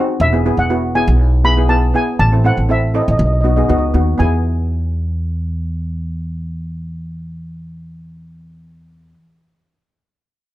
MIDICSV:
0, 0, Header, 1, 4, 480
1, 0, Start_track
1, 0, Key_signature, 4, "major"
1, 0, Tempo, 498753
1, 197, Time_signature, 4, 2, 24, 8
1, 10145, End_track
2, 0, Start_track
2, 0, Title_t, "Steel pan"
2, 0, Program_c, 0, 114
2, 205, Note_on_c, 0, 76, 106
2, 567, Note_on_c, 0, 78, 94
2, 574, Note_off_c, 0, 76, 0
2, 917, Note_on_c, 0, 80, 101
2, 931, Note_off_c, 0, 78, 0
2, 1393, Note_on_c, 0, 83, 120
2, 1411, Note_off_c, 0, 80, 0
2, 1627, Note_on_c, 0, 81, 103
2, 1642, Note_off_c, 0, 83, 0
2, 1879, Note_off_c, 0, 81, 0
2, 1883, Note_on_c, 0, 80, 99
2, 2111, Note_on_c, 0, 81, 112
2, 2127, Note_off_c, 0, 80, 0
2, 2361, Note_off_c, 0, 81, 0
2, 2368, Note_on_c, 0, 78, 99
2, 2586, Note_off_c, 0, 78, 0
2, 2610, Note_on_c, 0, 76, 89
2, 2827, Note_off_c, 0, 76, 0
2, 2850, Note_on_c, 0, 75, 73
2, 2899, Note_off_c, 0, 75, 0
2, 2910, Note_on_c, 0, 75, 53
2, 2978, Note_off_c, 0, 75, 0
2, 2992, Note_on_c, 0, 75, 67
2, 3046, Note_off_c, 0, 75, 0
2, 3058, Note_on_c, 0, 75, 52
2, 3123, Note_off_c, 0, 75, 0
2, 3135, Note_on_c, 0, 75, 59
2, 3194, Note_off_c, 0, 75, 0
2, 3206, Note_on_c, 0, 75, 53
2, 3268, Note_off_c, 0, 75, 0
2, 3280, Note_on_c, 0, 75, 61
2, 3333, Note_off_c, 0, 75, 0
2, 3344, Note_on_c, 0, 75, 51
2, 3411, Note_off_c, 0, 75, 0
2, 3428, Note_on_c, 0, 75, 60
2, 3489, Note_off_c, 0, 75, 0
2, 3500, Note_on_c, 0, 75, 53
2, 3556, Note_off_c, 0, 75, 0
2, 3567, Note_on_c, 0, 75, 63
2, 3628, Note_off_c, 0, 75, 0
2, 3640, Note_on_c, 0, 75, 59
2, 3703, Note_off_c, 0, 75, 0
2, 4033, Note_on_c, 0, 80, 85
2, 8783, Note_off_c, 0, 80, 0
2, 10145, End_track
3, 0, Start_track
3, 0, Title_t, "Steel pan"
3, 0, Program_c, 1, 114
3, 0, Note_on_c, 1, 60, 97
3, 0, Note_on_c, 1, 63, 82
3, 0, Note_on_c, 1, 66, 106
3, 174, Note_off_c, 1, 60, 0
3, 175, Note_off_c, 1, 63, 0
3, 178, Note_off_c, 1, 66, 0
3, 315, Note_on_c, 1, 59, 76
3, 315, Note_on_c, 1, 64, 71
3, 323, Note_on_c, 1, 68, 82
3, 388, Note_off_c, 1, 59, 0
3, 388, Note_off_c, 1, 64, 0
3, 392, Note_off_c, 1, 68, 0
3, 439, Note_on_c, 1, 59, 82
3, 442, Note_on_c, 1, 64, 75
3, 447, Note_on_c, 1, 68, 92
3, 584, Note_off_c, 1, 59, 0
3, 585, Note_off_c, 1, 64, 0
3, 588, Note_off_c, 1, 68, 0
3, 673, Note_on_c, 1, 59, 83
3, 678, Note_on_c, 1, 64, 73
3, 681, Note_on_c, 1, 66, 92
3, 821, Note_off_c, 1, 59, 0
3, 823, Note_off_c, 1, 64, 0
3, 825, Note_off_c, 1, 66, 0
3, 916, Note_on_c, 1, 59, 77
3, 923, Note_on_c, 1, 64, 76
3, 925, Note_on_c, 1, 68, 84
3, 1206, Note_off_c, 1, 59, 0
3, 1209, Note_off_c, 1, 64, 0
3, 1210, Note_off_c, 1, 68, 0
3, 1390, Note_on_c, 1, 59, 77
3, 1396, Note_on_c, 1, 64, 71
3, 1401, Note_on_c, 1, 68, 86
3, 1467, Note_off_c, 1, 59, 0
3, 1470, Note_off_c, 1, 64, 0
3, 1472, Note_off_c, 1, 68, 0
3, 1511, Note_on_c, 1, 59, 75
3, 1515, Note_on_c, 1, 64, 72
3, 1520, Note_on_c, 1, 68, 83
3, 1586, Note_off_c, 1, 59, 0
3, 1587, Note_off_c, 1, 64, 0
3, 1590, Note_off_c, 1, 68, 0
3, 1627, Note_on_c, 1, 59, 83
3, 1632, Note_on_c, 1, 64, 72
3, 1635, Note_on_c, 1, 68, 90
3, 1778, Note_off_c, 1, 59, 0
3, 1781, Note_off_c, 1, 64, 0
3, 1782, Note_off_c, 1, 68, 0
3, 1867, Note_on_c, 1, 59, 80
3, 1875, Note_on_c, 1, 64, 72
3, 1879, Note_on_c, 1, 68, 88
3, 2089, Note_off_c, 1, 59, 0
3, 2092, Note_off_c, 1, 64, 0
3, 2094, Note_off_c, 1, 68, 0
3, 2233, Note_on_c, 1, 60, 71
3, 2241, Note_on_c, 1, 64, 66
3, 2245, Note_on_c, 1, 69, 81
3, 2307, Note_off_c, 1, 60, 0
3, 2311, Note_off_c, 1, 64, 0
3, 2313, Note_off_c, 1, 69, 0
3, 2350, Note_on_c, 1, 60, 83
3, 2356, Note_on_c, 1, 64, 76
3, 2361, Note_on_c, 1, 69, 93
3, 2499, Note_off_c, 1, 60, 0
3, 2502, Note_off_c, 1, 64, 0
3, 2505, Note_off_c, 1, 69, 0
3, 2586, Note_on_c, 1, 60, 86
3, 2591, Note_on_c, 1, 64, 71
3, 2598, Note_on_c, 1, 69, 86
3, 2737, Note_off_c, 1, 60, 0
3, 2740, Note_off_c, 1, 64, 0
3, 2743, Note_off_c, 1, 69, 0
3, 2828, Note_on_c, 1, 60, 72
3, 2835, Note_on_c, 1, 64, 75
3, 2836, Note_on_c, 1, 69, 89
3, 3072, Note_off_c, 1, 60, 0
3, 3076, Note_off_c, 1, 64, 0
3, 3076, Note_off_c, 1, 69, 0
3, 3310, Note_on_c, 1, 59, 72
3, 3314, Note_on_c, 1, 63, 70
3, 3318, Note_on_c, 1, 66, 82
3, 3387, Note_off_c, 1, 59, 0
3, 3389, Note_off_c, 1, 63, 0
3, 3391, Note_off_c, 1, 66, 0
3, 3436, Note_on_c, 1, 59, 72
3, 3440, Note_on_c, 1, 63, 67
3, 3442, Note_on_c, 1, 68, 80
3, 3508, Note_off_c, 1, 59, 0
3, 3510, Note_off_c, 1, 63, 0
3, 3511, Note_off_c, 1, 68, 0
3, 3547, Note_on_c, 1, 59, 83
3, 3556, Note_on_c, 1, 63, 77
3, 3558, Note_on_c, 1, 66, 87
3, 3698, Note_off_c, 1, 59, 0
3, 3703, Note_off_c, 1, 63, 0
3, 3704, Note_off_c, 1, 66, 0
3, 3790, Note_on_c, 1, 59, 76
3, 3794, Note_on_c, 1, 63, 71
3, 3802, Note_on_c, 1, 66, 80
3, 4010, Note_off_c, 1, 59, 0
3, 4012, Note_off_c, 1, 63, 0
3, 4016, Note_off_c, 1, 66, 0
3, 4020, Note_on_c, 1, 59, 88
3, 4036, Note_on_c, 1, 64, 79
3, 4058, Note_on_c, 1, 68, 92
3, 8770, Note_off_c, 1, 59, 0
3, 8786, Note_off_c, 1, 64, 0
3, 8808, Note_off_c, 1, 68, 0
3, 10145, End_track
4, 0, Start_track
4, 0, Title_t, "Upright bass"
4, 0, Program_c, 2, 32
4, 192, Note_on_c, 2, 28, 108
4, 499, Note_off_c, 2, 28, 0
4, 552, Note_on_c, 2, 28, 84
4, 959, Note_off_c, 2, 28, 0
4, 1035, Note_on_c, 2, 35, 108
4, 1846, Note_off_c, 2, 35, 0
4, 2111, Note_on_c, 2, 33, 108
4, 2419, Note_off_c, 2, 33, 0
4, 2476, Note_on_c, 2, 33, 88
4, 2882, Note_off_c, 2, 33, 0
4, 2964, Note_on_c, 2, 33, 100
4, 3061, Note_off_c, 2, 33, 0
4, 3071, Note_on_c, 2, 35, 112
4, 3478, Note_off_c, 2, 35, 0
4, 3555, Note_on_c, 2, 37, 93
4, 3772, Note_off_c, 2, 37, 0
4, 3793, Note_on_c, 2, 39, 87
4, 4011, Note_off_c, 2, 39, 0
4, 4039, Note_on_c, 2, 40, 100
4, 8789, Note_off_c, 2, 40, 0
4, 10145, End_track
0, 0, End_of_file